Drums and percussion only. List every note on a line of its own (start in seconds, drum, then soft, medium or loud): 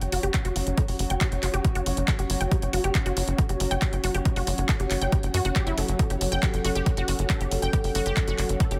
0.01 closed hi-hat medium
0.12 open hi-hat loud
0.23 closed hi-hat medium
0.34 kick loud
0.34 clap loud
0.34 closed hi-hat medium
0.45 closed hi-hat medium
0.56 open hi-hat loud
0.67 closed hi-hat medium
0.78 kick loud
0.78 closed hi-hat medium
0.88 open hi-hat medium
0.99 open hi-hat loud
1.10 closed hi-hat medium
1.21 kick loud
1.21 clap loud
1.21 closed hi-hat medium
1.32 closed hi-hat medium
1.43 clap soft
1.43 open hi-hat loud
1.54 closed hi-hat medium
1.65 kick loud
1.65 closed hi-hat medium
1.75 closed hi-hat medium
1.86 open hi-hat loud
1.97 closed hi-hat medium
2.08 kick loud
2.08 clap loud
2.08 closed hi-hat medium
2.19 closed hi-hat medium
2.30 open hi-hat loud
2.41 closed hi-hat soft
2.51 kick loud
2.51 closed hi-hat medium
2.62 closed hi-hat medium
2.73 open hi-hat loud
2.84 closed hi-hat medium
2.95 kick loud
2.95 clap loud
2.95 closed hi-hat medium
3.06 closed hi-hat medium
3.17 open hi-hat loud
3.28 closed hi-hat medium
3.38 kick loud
3.38 closed hi-hat medium
3.49 closed hi-hat medium
3.60 open hi-hat loud
3.71 closed hi-hat medium
3.82 kick loud
3.82 clap loud
3.82 closed hi-hat medium
3.93 closed hi-hat medium
4.04 open hi-hat loud
4.14 closed hi-hat soft
4.25 kick loud
4.25 closed hi-hat medium
4.36 open hi-hat medium
4.47 open hi-hat loud
4.58 closed hi-hat soft
4.69 kick loud
4.69 clap loud
4.69 closed hi-hat medium
4.80 closed hi-hat medium
4.91 clap soft
4.91 open hi-hat loud
5.01 closed hi-hat medium
5.12 kick loud
5.12 closed hi-hat medium
5.23 closed hi-hat medium
5.34 open hi-hat loud
5.45 closed hi-hat soft
5.56 kick loud
5.56 clap loud
5.56 closed hi-hat medium
5.67 closed hi-hat soft
5.78 open hi-hat loud
5.88 closed hi-hat soft
5.99 kick loud
5.99 closed hi-hat medium
6.10 closed hi-hat medium
6.21 open hi-hat loud
6.32 closed hi-hat soft
6.43 kick loud
6.43 clap loud
6.43 closed hi-hat medium
6.54 closed hi-hat medium
6.65 open hi-hat loud
6.75 closed hi-hat soft
6.86 kick loud
6.86 closed hi-hat medium
6.97 closed hi-hat medium
7.08 open hi-hat loud
7.19 closed hi-hat soft
7.30 kick loud
7.30 clap loud
7.30 closed hi-hat medium
7.41 closed hi-hat medium
7.51 open hi-hat loud
7.62 closed hi-hat medium
7.73 kick loud
7.73 closed hi-hat medium
7.84 open hi-hat medium
7.95 open hi-hat loud
8.06 closed hi-hat medium
8.17 kick loud
8.17 clap loud
8.17 closed hi-hat medium
8.28 closed hi-hat medium
8.38 clap soft
8.38 open hi-hat loud
8.49 closed hi-hat medium
8.60 kick loud
8.60 closed hi-hat medium
8.71 closed hi-hat medium